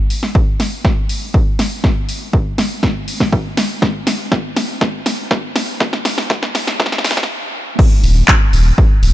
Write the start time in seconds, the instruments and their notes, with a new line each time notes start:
0.10 open hi-hat
0.23 snare
0.35 kick
0.60 snare, open hi-hat
0.85 kick, snare
1.09 open hi-hat
1.34 kick
1.59 snare, open hi-hat
1.84 kick, snare
2.09 open hi-hat
2.33 kick
2.58 snare, open hi-hat
2.83 kick, snare
3.08 open hi-hat
3.20 kick, snare
3.33 kick
3.57 snare, open hi-hat
3.82 kick, snare
4.07 snare, open hi-hat
4.32 kick, snare
4.56 snare, open hi-hat
4.81 kick, snare
5.06 snare, open hi-hat
5.31 kick, snare
5.56 snare, open hi-hat
5.80 kick, snare
5.93 snare
6.05 snare, open hi-hat
6.18 snare
6.30 kick, snare
6.43 snare
6.55 snare, open hi-hat
6.67 snare
6.80 kick, snare
6.86 snare
6.92 snare
6.98 snare
7.04 snare, open hi-hat
7.11 snare
7.17 kick, snare
7.23 snare
7.79 kick, crash
8.04 analog synth bass D#1, open hi-hat
8.28 kick, clap
8.53 analog synth bass D#1, open hi-hat
8.78 kick
9.03 analog synth bass D#1, open hi-hat